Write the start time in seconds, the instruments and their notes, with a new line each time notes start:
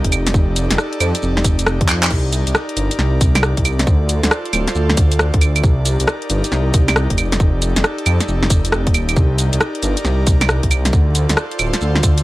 Already playing: analog synth pad D#4 G4 A#4 D5
0.04 detuned saw bass F1, kick, closed hi-hat
0.12 analog synth pad A4 D5, open hi-hat, claves, shaker
0.27 snare, closed hi-hat, shaker
0.34 detuned saw bass F1, kick, shaker
0.56 open hi-hat, shaker
0.71 detuned saw bass F1, snare, closed hi-hat, shaker
0.78 cross-stick, shaker
0.93 closed hi-hat
1.00 detuned saw bass F2, open hi-hat, claves, shaker
1.15 closed hi-hat, shaker
1.22 detuned saw bass F1, shaker
1.37 snare
1.44 detuned saw bass F1, kick, open hi-hat, shaker
1.59 closed hi-hat, shaker
1.66 cross-stick, shaker
1.81 detuned saw bass F2, kick, closed hi-hat
1.89 clap, open hi-hat, claves, shaker
2.03 clap, closed hi-hat, claves, shaker
2.10 detuned saw bass C2, analog synth pad A#4, kick, crash, shaker
2.33 open hi-hat, shaker
2.47 detuned saw bass C2, closed hi-hat, shaker
2.55 cross-stick, shaker
2.69 closed hi-hat
2.77 detuned saw bass G1, open hi-hat, shaker
2.91 closed hi-hat, shaker
2.99 detuned saw bass C2, snare, shaker
3.21 detuned saw bass C2, kick, open hi-hat, shaker
3.35 snare, closed hi-hat, claves, shaker
3.43 cross-stick, shaker
3.57 detuned saw bass C2, kick, closed hi-hat
3.65 open hi-hat, claves, shaker
3.79 snare, closed hi-hat, shaker
3.87 detuned saw bass D2, analog synth pad F4 A4 C5, kick, shaker
4.09 open hi-hat, shaker
4.23 detuned saw bass D2, snare, closed hi-hat, shaker
4.31 cross-stick, shaker
4.46 closed hi-hat
4.53 detuned saw bass D1, open hi-hat, claves, shaker
4.68 snare, closed hi-hat, shaker
4.75 detuned saw bass D2, shaker
4.89 snare
4.97 detuned saw bass D2, kick, open hi-hat, shaker
5.12 closed hi-hat, shaker
5.19 cross-stick, shaker
5.34 detuned saw bass D2, kick, closed hi-hat
5.41 open hi-hat, claves, shaker
5.56 closed hi-hat, claves, shaker
5.63 detuned saw bass C2, analog synth pad D#4 G4 A#4, kick, shaker
5.86 open hi-hat, shaker
6.00 detuned saw bass C2, closed hi-hat, shaker
6.08 cross-stick, shaker
6.22 closed hi-hat
6.30 detuned saw bass G1, open hi-hat, shaker
6.44 closed hi-hat, shaker
6.52 detuned saw bass C2, snare, shaker
6.74 detuned saw bass C2, kick, open hi-hat, shaker
6.88 snare, closed hi-hat, claves, shaker
6.96 cross-stick, shaker
7.10 detuned saw bass F1, kick, closed hi-hat
7.18 analog synth pad A4, open hi-hat, claves, shaker
7.32 snare, closed hi-hat, shaker
7.40 detuned saw bass F1, kick, shaker
7.62 open hi-hat, shaker
7.76 detuned saw bass F1, snare, closed hi-hat, shaker
7.84 cross-stick, shaker
7.98 closed hi-hat
8.06 detuned saw bass F2, open hi-hat, claves, shaker
8.20 snare, closed hi-hat, shaker
8.28 detuned saw bass F1, shaker
8.43 snare
8.50 detuned saw bass F1, kick, open hi-hat, shaker
8.65 closed hi-hat, shaker
8.72 cross-stick, shaker
8.87 detuned saw bass D#1, kick, closed hi-hat
8.94 open hi-hat, claves, shaker
9.09 closed hi-hat, claves, shaker
9.16 detuned saw bass C2, analog synth pad A#4 D5, kick, shaker
9.38 open hi-hat, shaker
9.53 detuned saw bass C2, closed hi-hat, shaker
9.61 cross-stick, shaker
9.75 closed hi-hat
9.83 detuned saw bass G1, open hi-hat, shaker
9.97 closed hi-hat, shaker
10.05 detuned saw bass C2, snare, shaker
10.27 detuned saw bass C2, kick, open hi-hat, shaker
10.41 snare, closed hi-hat, claves, shaker
10.49 cross-stick, shaker
10.63 detuned saw bass C2, kick, closed hi-hat
10.71 open hi-hat, claves, shaker
10.85 snare, closed hi-hat, shaker
10.93 detuned saw bass D2, analog synth pad F4 A4 C5, kick, shaker
11.15 open hi-hat, shaker
11.29 detuned saw bass D2, snare, closed hi-hat, shaker
11.37 cross-stick, shaker
11.51 closed hi-hat
11.59 detuned saw bass D1, open hi-hat, claves, shaker
11.73 snare, closed hi-hat, shaker
11.81 detuned saw bass D2, shaker
11.95 snare
12.03 detuned saw bass D2, kick, open hi-hat, shaker
12.18 closed hi-hat, shaker